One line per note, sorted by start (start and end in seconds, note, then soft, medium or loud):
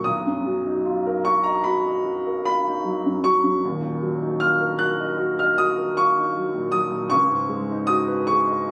0.04 3.59 B1 medium
0.04 1.27 D#6 medium
0.27 0.59 F#2 soft
0.46 0.78 F#3 soft
0.66 0.99 D#4 soft
0.85 1.18 F4 medium
1.06 1.39 A#4 medium
1.25 1.58 F#4 medium
1.25 1.46 C#6 loud
1.43 1.78 D#5 medium
1.43 1.65 A#5 medium
1.64 1.97 F#4 medium
1.64 2.44 B5 medium
1.86 2.18 D#5 medium
2.04 2.36 F#4 soft
2.26 2.57 A#4 medium
2.45 2.77 F4 medium
2.45 3.23 B5 medium
2.67 2.97 D#4 soft
2.84 3.15 F#3 soft
3.06 3.36 F#2 soft
3.24 3.55 F#3 medium
3.24 4.40 C#6 loud
3.44 3.63 F#2 soft
3.63 7.09 D#1 medium
3.63 7.10 D#2 medium
3.82 4.13 A#2 soft
4.02 4.32 F#3 medium
4.22 4.52 D#4 soft
4.40 4.71 F4 medium
4.40 4.79 F6 loud
4.60 4.92 A#4 medium
4.79 5.12 F#4 medium
4.79 5.39 F#6 loud
5.00 5.32 D#5 medium
5.18 5.51 F#4 medium
5.39 5.71 D#5 medium
5.39 5.59 F6 medium
5.58 5.90 F#4 medium
5.58 5.97 D#6 loud
5.77 6.09 A#4 medium
5.97 6.29 F4 medium
5.97 6.74 C#6 loud
6.18 6.48 D#4 medium
6.37 6.67 F#3 soft
6.55 6.85 A#2 soft
6.72 7.04 F#3 medium
6.72 7.12 D#6 loud
6.91 7.12 A#2 medium
7.10 8.71 C#2 medium
7.10 7.90 C#6 loud
7.30 7.63 G#2 medium
7.49 7.82 G#3 medium
7.71 8.02 D#4 medium
7.87 8.21 F#4 medium
7.87 8.28 D#6 loud
8.07 8.40 B4 medium
8.27 8.60 G#4 medium
8.27 8.71 C#6 loud
8.47 8.71 D#5 medium